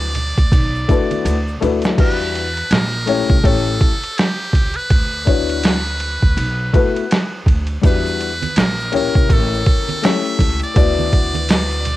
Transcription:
Already playing: D2 D5
0.01 shaker
0.15 ride, low conga, shaker
0.37 D2, kick, ride, shaker
0.52 B1, kick, ride, high conga, shaker
0.75 shaker
0.88 A3 D4 E4 F#4 B4, kick, ride, shaker
1.11 ride, high conga, shaker
1.25 D2, hi-hat pedal, ride, shaker
1.48 shaker
1.60 D2 A3 D4 E4 F#4 B4, ride, low conga, shaker
1.82 snare, ride, shaker
1.97 E2 G3 D4 E4 F#4 B4, kick, crash, ride
2.35 ride
2.57 ride
2.71 A#1 A#4, snare, hi-hat pedal, ride
3.06 A3 C#4 E4 G4 C#5, ride
3.30 C2, kick
3.43 A1 A3 C#4 E4 G4 A4 C#5, kick, ride
3.81 kick, ride
4.04 ride
4.18 G4, snare, hi-hat pedal, ride
4.53 C#2, kick, ride
4.74 B4, ride
4.90 D2, kick, ride
5.25 B3 D4 E4 F#4 C#5, kick, ride
5.49 ride
5.63 snare, hi-hat pedal, ride
6.00 ride
6.22 D2, kick
6.37 B1, ride
6.73 A3 B3 E4 F#4 B4, kick, ride
6.96 ride
7.11 snare, hi-hat pedal, ride
7.46 D2, kick, ride
7.67 ride
7.81 E2 G3 D4 E4 F#4 B4, kick, ride, shaker
7.86 B4
8.07 shaker
8.21 ride, shaker
8.42 ride, high conga, shaker
8.56 A#1 A#4, snare, hi-hat pedal, ride, shaker
8.80 shaker
8.92 A#3 C#4 E4 G4 C#5, ride, low conga, shaker
8.96 A#4
9.15 C2, kick, shaker
9.30 A1 A4, kick, ride, high conga, shaker
9.54 shaker
9.66 kick, ride, shaker
9.89 ride, high conga, shaker
10.02 A3 C#4 E4 G4 C#5 E5, snare, hi-hat pedal, ride, shaker
10.26 shaker
10.39 C#2, kick, ride, low conga, shaker
10.59 ride, shaker
10.64 D5
10.74 D2 B3 D4 E4 F#4 D5, kick, ride, shaker
10.99 high conga, shaker
11.13 kick, ride, shaker
11.34 ride, high conga, shaker
11.49 snare, hi-hat pedal, ride, shaker
11.71 shaker
11.85 ride, low conga, shaker

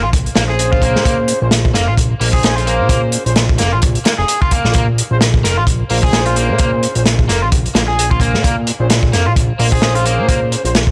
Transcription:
0.03 A#1 F4
0.13 kick, closed hi-hat
0.26 closed hi-hat
0.36 A#1 A#3 C#4 F4 G#4 C5, snare, closed hi-hat
0.49 G#4
0.59 closed hi-hat
0.72 F4, kick
0.82 A#3, kick, closed hi-hat
0.96 A#2, snare
1.05 A#3, kick, closed hi-hat
1.28 closed hi-hat
1.42 A#1 C#4 F4 G#4 C5
1.51 snare, closed hi-hat
1.65 kick
1.74 F1 A#3, snare, closed hi-hat
1.88 A#1 F4
1.98 kick, closed hi-hat
2.20 A#1 A#3 C#4 F4 G#4 C5, open hi-hat
2.33 G#4, kick
2.43 snare, closed hi-hat
2.57 F4, closed hi-hat
2.67 A#3, closed hi-hat
2.80 A#2
2.89 A#3, kick, closed hi-hat
3.12 closed hi-hat
3.26 A#1 C#4 F4 G#4 C5, closed hi-hat
3.36 snare, closed hi-hat
3.49 kick
3.58 F1 A#3, snare, closed hi-hat
3.72 A#1 F4
3.82 kick, closed hi-hat
3.95 closed hi-hat
4.05 A#3, snare, closed hi-hat
4.18 F1 G#4
4.28 closed hi-hat
4.42 F4, kick
4.51 A#3, kick, closed hi-hat
4.65 A#1, snare
4.74 A#3, kick, closed hi-hat
4.98 closed hi-hat
5.11 A#1 C#4 F4 G#4 C5
5.21 snare, closed hi-hat
5.34 kick
5.44 F1 A#3, snare, closed hi-hat
5.57 A#1 F4
5.67 kick, closed hi-hat
5.90 A#1 A#3 C#4 F4 G#4 C5, open hi-hat
6.03 G#4, kick
6.13 snare, closed hi-hat
6.26 F4, closed hi-hat
6.36 A#3, closed hi-hat
6.50 A#2
6.58 A#3, kick, closed hi-hat
6.83 closed hi-hat
6.95 A#1 C#4 F4 G#4 C5, closed hi-hat
7.06 snare, closed hi-hat
7.19 kick
7.29 F1 A#3, snare, closed hi-hat
7.42 A#1 F4
7.52 kick, closed hi-hat
7.66 closed hi-hat
7.75 A#1 A#3, snare, closed hi-hat
7.88 G#4
7.99 closed hi-hat
8.11 F4, kick
8.20 A#3, kick, closed hi-hat
8.34 A#2, snare
8.44 A#3, kick, closed hi-hat
8.67 closed hi-hat
8.80 A#1 C#4 F4 G#4 C5
8.90 snare, closed hi-hat
9.03 kick
9.13 F1 A#3, snare, closed hi-hat
9.26 A#1 F4
9.36 kick, closed hi-hat
9.59 A#1 A#3 C#4 F4 G#4 C5, open hi-hat
9.72 G#4, kick
9.82 snare, closed hi-hat
9.95 F4, closed hi-hat
10.06 A#3, closed hi-hat
10.19 A#2
10.29 A#3, kick, closed hi-hat
10.52 closed hi-hat
10.65 A#1 C#4 F4 G#4 C5, closed hi-hat
10.75 snare, closed hi-hat
10.87 kick

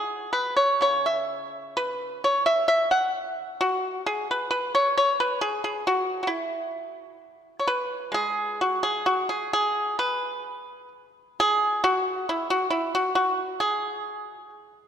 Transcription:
Already playing: G#4
0.33 B4
0.57 C#5
0.81 C#3 C#5
1.06 E5
1.77 B4
2.24 C#5
2.46 E5
2.68 E5
2.91 F#5
3.61 F#4
4.06 G#4
4.31 B4
4.51 B4
4.75 C#5
4.97 C#5
5.20 B4
5.41 G#4
5.64 G#4
5.87 F#4
6.23 F#4
6.27 E4
7.59 C#5
7.67 B4
8.12 G#3 G#4
8.61 F#4
8.83 G#4
9.06 F#4
9.29 G#4
9.53 G#4
9.99 B4
11.40 G#4
11.84 F#4
12.29 E4
12.50 F#4
12.70 E4
12.95 F#4
13.15 F#4
13.60 G#4

